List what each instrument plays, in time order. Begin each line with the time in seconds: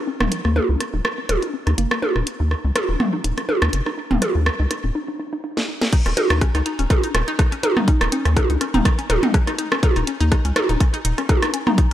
0.07 synth arpeggio sound C#4
0.21 analog synth bass D#1, synth arpeggio sound D#4, cross-stick, mid tom
0.32 synth arpeggio sound D#4, closed hi-hat
0.45 analog synth bass D#2, synth pluck A#3, synth arpeggio sound C#4, cross-stick
0.56 synth pluck A#3, synth arpeggio sound D#4, high tom
0.69 analog synth bass C#2, synth arpeggio sound D#4
0.80 synth arpeggio sound C#4, cross-stick, closed hi-hat
0.94 analog synth bass D#1, synth arpeggio sound D#4
1.05 synth arpeggio sound D#4, cross-stick
1.18 synth arpeggio sound C#4
1.29 analog synth bass D#1, synth arpeggio sound D#4, cross-stick, closed hi-hat, high tom
1.42 synth arpeggio sound D#4, closed hi-hat
1.54 synth arpeggio sound C#4
1.67 analog synth bass D#2, synth arpeggio sound D#4, cross-stick, closed hi-hat
1.78 analog synth bass F#1, synth pluck A#3, synth arpeggio sound D#4, closed hi-hat
1.91 synth pluck A#3, synth arpeggio sound C#4, cross-stick
2.02 synth arpeggio sound D#4, high tom
2.16 analog synth bass D#1, synth arpeggio sound D#4, cross-stick
2.27 synth arpeggio sound C#4, closed hi-hat
2.40 analog synth bass D#2, synth arpeggio sound D#4
2.51 synth arpeggio sound D#4, cross-stick
2.64 analog synth bass C#2, synth arpeggio sound C#4
2.76 synth arpeggio sound D#4, cross-stick, closed hi-hat, high tom
2.89 analog synth bass D#1, synth arpeggio sound D#4
3.00 synth arpeggio sound C#4, cross-stick, mid tom
3.13 synth arpeggio sound D#4
3.24 analog synth bass D#1, synth arpeggio sound D#4, closed hi-hat
3.38 synth arpeggio sound C#4, cross-stick, closed hi-hat
3.49 synth arpeggio sound D#4, high tom
3.62 analog synth bass D#2, synth arpeggio sound D#4, cross-stick, closed hi-hat
3.73 analog synth bass F#1, synth arpeggio sound C#4, closed hi-hat
3.86 synth arpeggio sound D#4, cross-stick
3.98 synth arpeggio sound D#4
4.11 analog synth bass D#1, synth arpeggio sound C#4, mid tom
4.22 synth arpeggio sound D#4, cross-stick, closed hi-hat, high tom
4.35 analog synth bass D#2, synth arpeggio sound D#4
4.46 synth arpeggio sound C#4, cross-stick
4.60 analog synth bass C#2, synth arpeggio sound D#4
4.71 synth arpeggio sound D#4, cross-stick, closed hi-hat
4.84 analog synth bass D#1, synth arpeggio sound C#4
4.95 synth arpeggio sound D#4
5.08 synth arpeggio sound D#4
5.19 synth arpeggio sound D#4
5.33 synth arpeggio sound D#4
5.44 synth arpeggio sound D#4
5.57 synth arpeggio sound D#4, snare
5.68 synth arpeggio sound D#4
5.82 synth arpeggio sound A#4, snare
5.93 synth arpeggio sound D#4, kick, closed hi-hat, crash
6.06 analog synth bass D#1, synth arpeggio sound C#4, cross-stick, closed hi-hat
6.17 synth arpeggio sound D#4, synth pluck F#4, closed hi-hat, high tom
6.30 analog synth bass D#2, synth arpeggio sound D#4, synth pluck F#4, cross-stick, closed hi-hat
6.41 synth arpeggio sound C#4, kick, cross-stick, closed hi-hat
6.55 analog synth bass C#2, synth arpeggio sound D#4, cross-stick, closed hi-hat
6.66 synth arpeggio sound D#4, closed hi-hat
6.79 analog synth bass D#1, synth arpeggio sound C#4, closed hi-hat
6.90 synth arpeggio sound D#4, kick, cross-stick, closed hi-hat, high tom
7.03 synth arpeggio sound D#4, closed hi-hat
7.15 analog synth bass D#1, synth arpeggio sound C#4, cross-stick, closed hi-hat
7.28 synth arpeggio sound D#4, closed hi-hat
7.39 synth arpeggio sound D#4, kick, cross-stick, closed hi-hat
7.52 synth arpeggio sound C#4, closed hi-hat
7.63 synth arpeggio sound D#4, closed hi-hat, high tom
7.77 synth arpeggio sound D#4, cross-stick, mid tom
7.88 synth arpeggio sound C#4, synth pluck D#4, kick, closed hi-hat
8.01 analog synth bass D#1, synth arpeggio sound D#4, cross-stick, closed hi-hat
8.12 synth pluck C#4, synth arpeggio sound D#4, closed hi-hat
8.25 analog synth bass D#2, synth arpeggio sound C#4, cross-stick, closed hi-hat
8.37 synth arpeggio sound D#4, kick, cross-stick, closed hi-hat, high tom
8.50 analog synth bass C#2, synth arpeggio sound D#4, closed hi-hat
8.61 synth arpeggio sound C#4, cross-stick, closed hi-hat
8.74 analog synth bass D#1, synth arpeggio sound D#4, closed hi-hat, mid tom
8.85 synth arpeggio sound D#4, kick, cross-stick, closed hi-hat
8.99 synth arpeggio sound C#4, closed hi-hat
9.10 analog synth bass D#1, synth arpeggio sound D#4, cross-stick, closed hi-hat, high tom
9.23 synth arpeggio sound D#4, closed hi-hat, mid tom
9.34 synth arpeggio sound C#4, kick, cross-stick, closed hi-hat
9.47 synth arpeggio sound D#4, cross-stick, closed hi-hat
9.59 synth arpeggio sound D#4, closed hi-hat
9.72 synth arpeggio sound C#4, cross-stick
9.83 synth arpeggio sound D#4, kick, closed hi-hat, high tom
9.96 analog synth bass D#1, synth arpeggio sound D#4, cross-stick, closed hi-hat
10.07 synth arpeggio sound C#4, closed hi-hat
10.21 analog synth bass D#2, synth arpeggio sound D#4, closed hi-hat
10.32 synth arpeggio sound D#4, kick, cross-stick, closed hi-hat
10.45 analog synth bass C#2, synth arpeggio sound C#4, closed hi-hat
10.56 synth arpeggio sound D#4, cross-stick, closed hi-hat, high tom
10.69 analog synth bass D#1, synth arpeggio sound D#4, closed hi-hat
10.80 synth arpeggio sound C#4, kick, cross-stick, closed hi-hat
10.94 synth arpeggio sound D#4, closed hi-hat
11.05 analog synth bass D#1, synth arpeggio sound D#4, closed hi-hat
11.18 synth arpeggio sound C#4, cross-stick, closed hi-hat
11.29 synth arpeggio sound D#4, kick, cross-stick, closed hi-hat, high tom
11.42 synth arpeggio sound D#4, cross-stick, closed hi-hat
11.54 synth arpeggio sound C#4, closed hi-hat
11.67 synth arpeggio sound D#4, cross-stick, mid tom
11.78 synth arpeggio sound D#4, kick, closed hi-hat